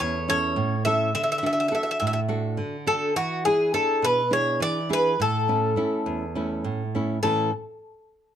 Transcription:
0.00 0.56 E2 medium
0.00 0.17 C#4 soft
0.00 0.17 E4 soft
0.00 0.18 A4 medium
0.00 0.28 C#5 medium
0.28 0.74 C#4 soft
0.28 0.74 E4 soft
0.28 0.75 A4 medium
0.28 0.83 C#5 loud
0.56 1.13 A2 medium
0.85 1.09 C#4 medium
0.85 1.09 E4 medium
0.85 1.09 A4 medium
0.85 1.12 E5 loud
1.15 1.71 D3 medium
1.15 1.22 E5 medium
1.24 1.30 E5 medium
1.32 1.37 E5 medium
1.38 1.44 E5 medium
1.43 1.70 D4 medium
1.43 1.70 F#4 soft
1.43 1.71 A4 medium
1.43 1.52 E5 medium
1.53 1.59 E5 medium
1.60 1.67 E5 medium
1.68 2.18 D4 soft
1.68 2.18 F#4 soft
1.68 2.18 A4 medium
1.68 1.73 E5 medium
1.75 1.81 E5 medium
1.83 1.89 E5 medium
1.91 1.97 E5 medium
2.00 2.58 A2 medium
2.00 2.05 E5 medium
2.07 2.12 E5 medium
2.13 2.19 E5 medium
2.28 2.75 D4 medium
2.28 2.75 F#4 soft
2.28 2.76 A4 medium
2.57 3.14 D3 medium
2.87 3.10 D4 soft
2.87 3.11 F#4 soft
2.87 3.11 A4 medium
2.87 3.16 A4 medium
3.16 3.73 E3 medium
3.16 3.45 F#4 loud
3.45 3.72 D4 medium
3.45 3.73 E4 soft
3.45 3.72 G#4 medium
3.45 3.73 G#4 medium
3.73 4.20 D4 soft
3.73 4.21 E4 soft
3.73 4.21 G#4 medium
3.73 4.04 A4 medium
4.02 4.59 B2 medium
4.02 4.31 B4 loud
4.30 4.78 D4 medium
4.30 4.78 E4 soft
4.30 4.78 G#4 medium
4.30 4.62 C#5 loud
4.60 5.17 E3 medium
4.60 4.89 D5 loud
4.89 5.13 D4 medium
4.89 5.13 E4 medium
4.89 5.14 G#4 medium
4.89 5.19 B4 loud
5.20 5.76 A2 medium
5.20 6.61 A4 medium
5.48 5.75 A3 medium
5.48 5.76 C#4 soft
5.48 5.76 E4 medium
5.76 6.23 A3 soft
5.76 6.24 C#4 soft
5.76 6.24 E4 medium
6.06 6.62 E2 medium
6.35 6.82 A3 medium
6.35 6.82 C#4 soft
6.35 6.82 E4 medium
6.64 7.21 A2 medium
6.95 7.17 A3 soft
6.95 7.18 C#4 soft
6.95 7.18 E4 medium
7.23 7.50 A2 medium
7.23 7.50 E3 medium
7.23 7.50 A3 medium
7.23 7.50 C#4 medium
7.23 7.50 E4 medium
7.23 7.50 A4 medium

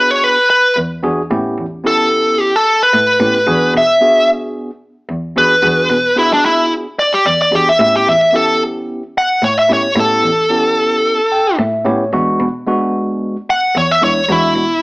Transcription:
0.00 0.73 B2 medium
0.00 0.36 B3 medium
0.00 0.36 D4 medium
0.00 0.37 F#4 medium
0.00 0.37 G#4 medium
0.00 0.11 B4 medium
0.11 0.24 C#5 medium
0.24 0.49 B4 medium
0.50 0.76 B4 medium
0.76 1.02 E2 medium
1.03 1.29 E2 medium
1.03 1.21 B3 medium
1.03 1.21 D4 medium
1.03 1.21 F#4 medium
1.03 1.21 G#4 medium
1.30 1.56 A2 medium
1.30 1.65 B3 medium
1.30 1.65 C#4 medium
1.30 1.65 E4 medium
1.30 1.65 G4 medium
1.58 2.89 E2 medium
1.84 2.53 B3 medium
1.84 2.53 C#4 medium
1.84 2.53 E4 medium
1.84 2.53 G4 medium
1.84 2.41 A4 medium
2.41 2.56 G4 medium
2.56 2.81 A4 medium
2.83 3.73 B4 medium
2.93 3.18 A2 medium
3.20 3.45 A2 medium
3.20 3.37 B3 medium
3.20 3.38 C#4 medium
3.20 3.38 E4 medium
3.20 3.38 G4 medium
3.46 3.72 E2 loud
3.46 3.81 B3 medium
3.46 3.81 D4 medium
3.46 3.81 F#4 medium
3.46 3.82 G#4 loud
3.74 5.05 B2 medium
3.74 4.28 E5 medium
4.01 4.69 B3 medium
4.01 4.70 D4 medium
4.01 4.70 F#4 medium
4.01 4.70 G#4 medium
5.09 5.34 E2 medium
5.36 5.62 E2 medium
5.36 5.54 B3 medium
5.36 5.54 D4 medium
5.36 5.54 F#4 medium
5.36 5.54 G#4 medium
5.36 6.16 B4 loud
5.62 5.88 E2 loud
5.62 5.97 B3 medium
5.62 5.97 D4 medium
5.62 5.98 F#4 medium
5.62 5.98 G#4 medium
5.90 7.22 B2 medium
6.16 6.85 B3 medium
6.16 6.85 D4 medium
6.16 6.32 E4 medium
6.16 6.86 F#4 medium
6.16 6.86 G#4 medium
6.33 6.45 D4 medium
6.45 6.71 E4 loud
6.99 7.13 D5 medium
7.14 7.26 G4 medium
7.25 7.51 E2 medium
7.25 7.40 D5 medium
7.42 7.53 D5 medium
7.51 7.78 E2 medium
7.51 7.70 B3 medium
7.51 7.70 D4 medium
7.51 7.70 F#4 medium
7.51 7.68 G4 medium
7.51 7.70 G#4 medium
7.69 7.80 E5 loud
7.79 8.05 A2 medium
7.79 8.14 B3 medium
7.79 8.14 C#4 medium
7.79 8.14 E4 medium
7.79 8.14 G4 medium
7.79 7.94 E5 medium
7.96 8.08 G4 medium
8.06 9.38 E2 medium
8.06 8.34 E5 medium
8.33 9.02 B3 medium
8.33 9.02 C#4 medium
8.33 9.02 E4 medium
8.33 9.02 G4 medium
8.33 8.61 A4 loud
9.18 9.43 F#5 medium
9.42 9.67 A2 medium
9.42 9.57 C#5 medium
9.59 9.70 E5 medium
9.69 9.94 A2 medium
9.69 9.87 B3 medium
9.69 9.87 C#4 medium
9.69 9.87 E4 medium
9.69 9.87 G4 medium
9.73 9.98 C#5 medium
9.96 10.21 A2 loud
9.96 10.30 B3 medium
9.96 10.31 C#4 medium
9.96 10.31 E4 medium
9.96 10.31 G4 medium
9.96 11.56 A4 medium
10.23 11.55 E2 medium
10.50 11.19 B3 medium
10.50 11.19 C#4 medium
10.50 11.19 E4 medium
10.50 11.19 G4 medium
11.32 11.57 G5 medium
11.59 11.84 A2 loud
11.59 11.84 E5 medium
11.85 12.11 A2 medium
11.85 12.03 B3 medium
11.85 12.03 C#4 medium
11.85 12.03 E4 medium
11.85 12.03 G4 medium
11.85 12.11 C#5 medium
12.13 12.38 E2 medium
12.13 12.47 G#3 medium
12.13 12.47 B3 medium
12.13 12.47 D4 medium
12.13 12.48 F#4 loud
12.40 13.71 B2 medium
12.66 13.35 G#3 medium
12.66 13.36 B3 medium
12.66 13.36 D4 medium
12.66 13.36 F#4 medium
13.50 13.76 F#5 medium
13.75 14.00 E2 medium
13.75 13.91 C#5 medium
13.91 14.03 E5 medium
14.02 14.27 E2 medium
14.02 14.20 G#3 medium
14.02 14.20 B3 medium
14.02 14.20 D4 medium
14.02 14.20 E4 medium
14.02 14.30 C#5 medium
14.29 14.54 E2 loud
14.29 14.63 G#3 medium
14.29 14.64 B3 medium
14.29 14.64 D4 medium
14.29 14.82 E4 loud
14.29 14.64 F#4 medium
14.56 14.82 B2 medium

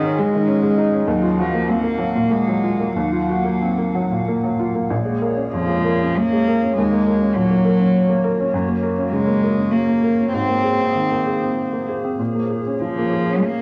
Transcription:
0.00 1.05 G#2 medium
0.00 0.20 D#3 medium
0.00 0.05 C#4 medium
0.00 1.08 C#4 medium
0.00 0.78 D#4 medium
0.00 1.08 G#4 medium
0.00 1.10 G#4 medium
0.00 1.08 D#5 medium
0.05 0.28 C#4 medium
0.19 1.08 G#3 medium
0.19 0.43 G#3 medium
0.35 0.58 D#3 medium
0.47 0.72 C#4 medium
0.63 0.87 G#3 medium
0.78 1.02 D#4 medium
0.93 1.08 C#4 medium
1.07 2.91 D#2 medium
1.07 1.41 F#3 medium
1.07 4.90 A#3 medium
1.07 4.90 F5 medium
1.07 4.90 F#5 medium
1.22 1.47 F4 medium
1.38 1.72 F3 medium
1.38 1.62 F#4 medium
1.54 1.78 A#3 medium
1.68 2.33 A#3 medium
1.68 1.84 C4 soft
1.83 2.08 A#3 medium
1.98 2.24 F#3 medium
2.15 2.40 A#2 medium
2.31 2.96 G#3 medium
2.31 2.56 A#3 medium
2.48 2.73 F#3 soft
2.64 2.89 F4 medium
2.80 3.06 A#3 medium
2.96 4.87 D#2 medium
2.96 4.67 F#3 medium
3.12 3.39 F4 medium
3.29 3.55 F#4 medium
3.45 3.71 A#3 soft
3.62 3.78 C4 soft
3.78 4.04 A#3 medium
3.95 4.20 F#3 soft
4.11 4.37 A#2 medium
4.28 4.53 A#3 medium
4.43 4.69 F#3 soft
4.59 4.85 F4 medium
4.75 4.91 A#3 soft
4.90 6.72 A#1 medium
4.90 10.28 A#3 medium
4.90 6.72 G#4 medium
4.90 10.28 C#5 medium
5.05 5.30 G#3 soft
5.22 5.46 A#4 soft
5.37 5.62 C#4 soft
5.53 5.78 F2 soft
5.53 6.19 F3 medium
5.69 5.94 G#3 soft
5.85 6.10 A#4 soft
6.01 6.50 C#4 soft
6.18 6.76 A#3 medium
6.33 6.56 G#3 soft
6.48 6.71 A#4 soft
6.63 6.77 C#4 soft
6.76 8.49 D#2 medium
6.76 7.36 G#3 medium
6.76 10.32 F#4 medium
6.92 7.15 A#3 soft
7.07 7.30 A#4 medium
7.21 7.44 C#4 soft
7.35 7.58 A#2 soft
7.35 8.52 F#3 medium
7.50 7.73 A#3 soft
7.65 7.87 A#4 medium
7.79 8.26 C#4 medium
8.09 8.32 A#3 soft
8.24 8.47 A#4 medium
8.40 8.53 C#4 medium
8.54 10.29 F#2 medium
8.68 8.91 A#3 medium
8.82 9.06 A#4 medium
8.98 9.21 C#4 medium
9.10 9.36 C#3 soft
9.10 9.72 G#3 medium
9.27 9.51 A#3 soft
9.43 9.66 A#4 medium
9.57 10.05 C#4 soft
9.71 10.32 A#3 medium
9.88 10.12 A#3 soft
10.04 10.27 A#4 soft
10.19 10.34 C#4 soft
10.32 12.16 G#2 soft
10.32 13.62 A#3 medium
10.32 11.85 C4 medium
10.32 13.62 G#4 medium
10.32 12.19 C5 medium
10.49 10.73 A#3 soft
10.64 10.89 G#4 soft
10.80 11.05 C4 soft
10.95 11.20 D#3 soft
11.11 11.36 A#3 soft
11.27 11.51 G#4 soft
11.42 11.92 C4 soft
11.73 11.98 A#3 soft
11.88 12.13 G#4 soft
12.04 12.19 C4 soft
12.19 13.62 A#2 soft
12.19 13.62 C#5 soft
12.35 12.59 A#3 soft
12.50 12.74 G#4 soft
12.66 12.90 C#4 soft
12.81 13.45 F3 medium
12.81 13.05 F3 soft
12.98 13.22 A#3 soft
13.13 13.37 G#4 soft
13.30 13.62 C#4 soft
13.44 13.62 A#3 medium

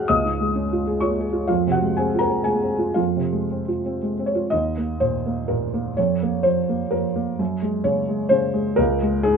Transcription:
0.00 0.10 G#3 soft
0.00 0.10 F#4 soft
0.00 0.10 G#4 soft
0.00 0.11 C5 soft
0.00 0.11 F5 medium
0.00 0.10 F#5 soft
0.00 0.11 F6 medium
0.00 0.10 F#6 medium
0.08 1.45 C#2 soft
0.08 0.98 D#5 medium
0.08 1.02 D#6 medium
0.25 0.49 G#2 soft
0.41 0.65 G#3 soft
0.56 0.80 C#4 soft
0.73 0.97 F4 soft
0.87 1.12 G#4 soft
1.00 1.27 F4 soft
1.00 1.23 C#5 soft
1.00 1.25 C#6 medium
1.20 1.44 G#4 soft
1.33 1.47 F4 soft
1.48 2.93 F2 soft
1.48 1.70 F4 soft
1.48 1.71 F5 medium
1.67 1.91 C3 soft
1.72 1.95 F#4 soft
1.72 1.96 F#5 medium
1.81 2.06 G#3 soft
1.97 2.23 C4 soft
1.97 2.20 G#4 soft
1.97 2.20 G#5 medium
2.15 2.40 F4 soft
2.15 2.44 A#5 medium
2.20 2.43 A#4 soft
2.30 2.55 C4 soft
2.44 2.73 G#3 soft
2.44 2.93 G#4 soft
2.44 2.96 G#5 medium
2.63 2.90 C4 soft
2.79 2.94 F4 soft
2.94 4.48 F2 soft
2.94 3.67 F4 soft
2.94 4.00 F5 medium
3.16 3.44 C3 soft
3.32 3.60 G#3 soft
3.52 3.78 C4 soft
3.68 3.95 F4 soft
3.86 4.12 C4 soft
4.02 4.29 G#3 soft
4.19 4.46 C4 soft
4.26 4.52 C#5 medium
4.35 4.52 F4 soft
4.50 5.93 D#2 soft
4.50 5.00 D#5 medium
4.77 5.16 A#3 soft
5.00 5.39 A#2 soft
5.00 5.49 C5 medium
5.26 5.64 A#3 soft
5.48 5.88 A#2 soft
5.48 5.96 A#4 medium
5.74 5.97 A#3 soft
5.97 7.36 F2 soft
5.97 6.44 C#5 medium
6.23 6.59 A#3 soft
6.43 6.83 F3 soft
6.43 6.91 C5 medium
6.69 7.06 A#3 soft
6.91 7.30 F3 soft
6.91 7.15 A#4 medium
7.16 7.39 A#3 soft
7.39 8.75 F#2 medium
7.62 8.00 G#3 soft
7.84 8.23 C#3 soft
7.84 8.32 C#5 medium
8.08 8.46 G#3 soft
8.29 8.69 C#3 soft
8.29 8.77 C5 medium
8.54 8.78 G#3 soft
8.76 9.37 C#2 medium
8.76 9.24 A#4 medium
9.02 9.37 G#3 soft
9.23 9.37 G#2 soft
9.23 9.37 G#4 medium

